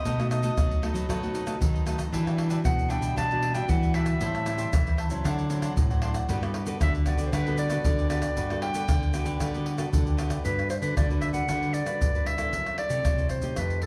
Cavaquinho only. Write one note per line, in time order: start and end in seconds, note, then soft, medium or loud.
0.05 0.17 D#4 medium
0.05 0.17 A4 medium
0.05 0.18 B4 medium
0.05 0.17 D#5 medium
0.19 0.29 A4 soft
0.19 0.30 B4 soft
0.19 0.30 D#5 soft
0.30 0.41 D#4 soft
0.30 0.42 A4 soft
0.30 0.42 B4 soft
0.30 0.42 D#5 soft
0.42 0.52 D#4 medium
0.42 0.53 A4 medium
0.42 0.53 B4 medium
0.42 0.53 D#5 medium
0.82 0.95 D#4 medium
0.82 0.95 A4 medium
0.82 0.94 B4 medium
0.82 0.92 D#5 medium
0.94 1.08 A4 soft
0.94 1.08 B4 soft
0.94 1.07 D#5 medium
1.09 1.32 D#4 medium
1.09 1.34 A4 medium
1.09 1.34 B4 medium
1.09 1.35 D#5 medium
1.34 1.45 D#4 medium
1.34 1.45 A4 medium
1.34 1.46 B4 medium
1.34 1.46 D#5 soft
1.46 1.56 D#4 medium
1.46 1.56 A4 medium
1.46 1.57 B4 medium
1.46 1.57 D#5 medium
1.74 1.85 A4 soft
1.74 1.86 B4 soft
1.74 1.86 D#5 soft
1.86 1.98 D#4 medium
1.86 1.99 A4 medium
1.86 1.98 B4 medium
1.86 1.97 D#5 medium
1.98 2.12 A4 soft
1.98 2.12 B4 soft
1.98 2.11 D#5 soft
2.12 2.25 D4 medium
2.12 2.25 G4 medium
2.12 2.25 B4 medium
2.12 2.24 E5 medium
2.26 2.37 G4 soft
2.26 2.38 B4 soft
2.26 2.38 E5 soft
2.37 2.48 D4 soft
2.37 2.49 G4 soft
2.37 2.49 B4 soft
2.37 2.49 E5 medium
2.49 2.59 D4 medium
2.49 2.60 G4 medium
2.49 2.60 B4 medium
2.49 2.60 E5 medium
2.88 3.02 D4 medium
2.88 3.02 G4 medium
2.88 3.01 B4 medium
2.88 2.99 E5 medium
3.01 3.16 G4 soft
3.01 3.15 B4 medium
3.01 3.14 E5 medium
3.16 3.40 D4 medium
3.16 3.41 G4 medium
3.16 3.42 B4 medium
3.16 3.42 E5 medium
3.41 3.53 D4 medium
3.41 3.54 G4 soft
3.41 3.54 B4 medium
3.41 3.54 E5 medium
3.54 3.64 D4 medium
3.54 3.64 G4 medium
3.54 3.65 B4 medium
3.54 3.65 E5 medium
3.83 3.93 G4 soft
3.83 3.94 B4 soft
3.83 3.94 E5 soft
3.94 4.06 D4 medium
3.94 4.07 G4 medium
3.94 4.06 B4 medium
3.94 4.05 E5 medium
4.06 4.20 G4 soft
4.06 4.20 B4 soft
4.06 4.19 E5 soft
4.21 4.33 G4 medium
4.21 4.33 C5 medium
4.21 4.34 E5 medium
4.21 4.33 A5 medium
4.34 4.45 C5 soft
4.34 4.46 E5 soft
4.34 4.46 A5 soft
4.45 4.57 G4 soft
4.45 4.57 C5 soft
4.45 4.58 E5 soft
4.45 4.58 A5 soft
4.58 4.68 G4 medium
4.58 4.68 C5 medium
4.58 4.68 E5 medium
4.58 4.69 A5 medium
4.97 5.10 G4 medium
4.97 5.10 C5 medium
4.97 5.10 E5 medium
4.97 5.08 A5 medium
5.10 5.23 C5 soft
5.10 5.23 E5 soft
5.10 5.23 A5 medium
5.24 5.48 D4 medium
5.24 5.49 C5 medium
5.24 5.50 D5 medium
5.24 5.50 F#5 medium
5.49 5.61 D4 soft
5.49 5.61 C5 medium
5.49 5.62 D5 medium
5.49 5.62 F#5 medium
5.62 5.72 D4 medium
5.62 5.72 C5 medium
5.62 5.72 D5 medium
5.62 5.73 F#5 medium
5.90 6.02 C5 soft
5.90 6.02 D5 soft
5.90 6.02 F#5 soft
6.02 6.14 D4 medium
6.02 6.15 C5 medium
6.02 6.14 D5 medium
6.02 6.13 F#5 medium
6.14 6.28 C5 soft
6.14 6.28 D5 soft
6.14 6.27 F#5 medium
6.29 6.41 F#4 medium
6.29 6.41 G4 medium
6.29 6.42 B4 medium
6.29 6.41 D5 medium
6.43 6.54 G4 soft
6.43 6.55 B4 soft
6.43 6.54 D5 soft
6.54 6.66 F#4 soft
6.54 6.66 G4 soft
6.54 6.67 B4 soft
6.54 6.67 D5 medium
6.67 6.76 F#4 medium
6.67 6.77 G4 medium
6.67 6.77 B4 medium
6.67 6.77 D5 medium
7.06 7.18 F#4 medium
7.06 7.19 G4 medium
7.06 7.18 B4 medium
7.06 7.17 D5 medium
7.18 7.32 G4 soft
7.18 7.32 B4 soft
7.18 7.31 D5 medium
7.32 7.56 F#4 medium
7.32 7.57 G4 medium
7.32 7.58 B4 medium
7.32 7.59 D5 medium
7.57 7.69 F#4 medium
7.57 7.70 G4 medium
7.57 7.70 B4 medium
7.57 7.70 D5 medium
7.70 7.80 F#4 medium
7.70 7.80 G4 medium
7.70 7.80 B4 medium
7.70 7.81 D5 medium
7.98 8.09 G4 soft
7.98 8.10 B4 soft
7.98 8.10 D5 medium
8.10 8.22 F#4 medium
8.10 8.23 G4 medium
8.10 8.22 B4 medium
8.10 8.21 D5 medium
8.22 8.36 G4 soft
8.22 8.35 B4 soft
8.22 8.35 D5 soft
8.37 8.49 F#4 medium
8.37 8.49 G4 medium
8.37 8.49 B4 medium
8.37 8.49 D5 medium
8.50 8.61 G4 soft
8.50 8.62 B4 soft
8.50 8.62 D5 soft
8.62 8.73 F#4 medium
8.62 8.73 G4 soft
8.62 8.74 B4 soft
8.62 8.74 D5 soft
8.74 8.84 F#4 medium
8.74 8.84 G4 medium
8.74 8.84 B4 medium
8.74 8.85 D5 medium
9.13 9.26 F#4 medium
9.13 9.26 G4 medium
9.13 9.25 B4 medium
9.13 9.24 D5 medium
9.25 9.40 G4 soft
9.25 9.39 B4 soft
9.25 9.38 D5 medium
9.40 9.64 F#4 medium
9.40 9.65 G4 medium
9.40 9.65 B4 medium
9.40 9.67 D5 medium
9.65 9.77 F#4 soft
9.65 9.77 G4 soft
9.65 9.77 B4 medium
9.65 9.78 D5 medium
9.78 9.88 F#4 medium
9.78 9.88 G4 medium
9.78 9.88 B4 medium
9.78 9.88 D5 medium
10.06 10.17 G4 soft
10.06 10.18 B4 soft
10.06 10.18 D5 soft
10.17 10.30 F#4 medium
10.17 10.30 G4 medium
10.17 10.29 B4 medium
10.17 10.28 D5 medium
10.29 10.43 G4 soft
10.29 10.43 B4 soft
10.29 10.42 D5 soft